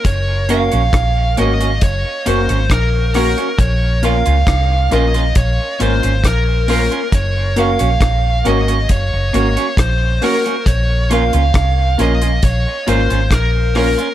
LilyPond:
<<
  \new Staff \with { instrumentName = "Lead electric guitar" } { \time 4/4 \key bes \minor \tempo 4 = 68 des''8 f''4 ees''8 des''8 c''8 bes'8 bes'8 | des''8 f''4 ees''8 des''8 c''8 bes'8 bes'8 | des''8 f''4 ees''8 des''8 des''8 c''8 bes'8 | des''8 f''4 ees''8 des''8 c''8 bes'8 bes'8 | }
  \new Staff \with { instrumentName = "Upright piano" } { \time 4/4 \key bes \minor r8 <bes des' ges' bes'>8 r8 <bes des' ges' bes'>8 r8 <bes des' ges' bes'>8 r8 <bes des' ges' bes'>8 | r8 <bes des' f' bes'>8 r8 <bes des' f' bes'>8 r8 <bes des' f' bes'>8 r8 <bes des' f' bes'>8 | r8 <bes des' ges' bes'>8 r8 <bes des' ges' bes'>8 r8 <bes des' ges' bes'>8 r8 <bes des' ges' bes'>8 | r8 <bes des' f' bes'>8 r8 <bes des' f' bes'>8 r8 <bes des' f' bes'>8 r8 <bes des' f' bes'>8 | }
  \new Staff \with { instrumentName = "Clean electric guitar" } { \time 4/4 \key bes \minor r8 <bes des' ges'>16 <bes des' ges'>16 r8 <bes des' ges'>16 <bes des' ges'>16 r8 <bes des' ges'>16 <bes des' ges'>16 r8 <bes des' ges'>16 <bes des' ges'>16 | r8 <bes des' f'>16 <bes des' f'>16 r8 <bes des' f'>16 <bes des' f'>16 r8 <bes des' f'>16 <bes des' f'>16 r8 <bes des' f'>16 <bes des' f'>16 | r8 <bes des' ges'>16 <bes des' ges'>16 r8 <bes des' ges'>16 <bes des' ges'>16 r8 <bes des' ges'>16 <bes des' ges'>16 r8 <bes des' ges'>16 <bes des' ges'>16 | r8 <bes des' f'>16 <bes des' f'>16 r8 <bes des' f'>16 <bes des' f'>16 r8 <bes des' f'>16 <bes des' f'>16 r8 <bes des' f'>16 <bes des' f'>16 | }
  \new Staff \with { instrumentName = "Fingered electric bass" } { \clef bass \time 4/4 \key bes \minor ges,,8. bes,,16 bes,,8 aes,,8 ges,,16 r16 ges,,16 aes,,16 bes,,8. r16 | bes,,8. des,16 c,8 bes,,8 bes,,16 r16 aes,,16 aes,,16 bes,,8. r16 | ges,,8. bes,,16 bes,,8 aes,,8 ges,,16 ges,,16 aes,,16 r16 bes,,8 r8 | bes,,8. des,16 c,8 bes,,8 bes,,16 r16 aes,,16 aes,,16 bes,,8. r16 | }
  \new DrumStaff \with { instrumentName = "Drums" } \drummode { \time 4/4 <hh bd>8 hh16 hh16 <hh bd ss>8 hh16 hh16 <hh bd>8 hh16 hh16 <hh bd ss>8 <hho ss>16 hh16 | <hh bd>8 hh16 hh16 <hh bd ss>8 <hh ss>16 hh16 <hh bd>8 hh16 hh16 <hh bd ss>8 hho16 hh16 | <hh bd>8 hh16 hh16 <hh bd ss>8 hh16 hh16 <hh bd>8 hh16 hh16 <hh bd ss>8 hho16 hh16 | <hh bd>8 hh16 hh16 <hh bd ss>8 hh16 hh16 <hh bd>8 hh16 hh16 <hh bd ss>8 <hho ss>16 hh16 | }
>>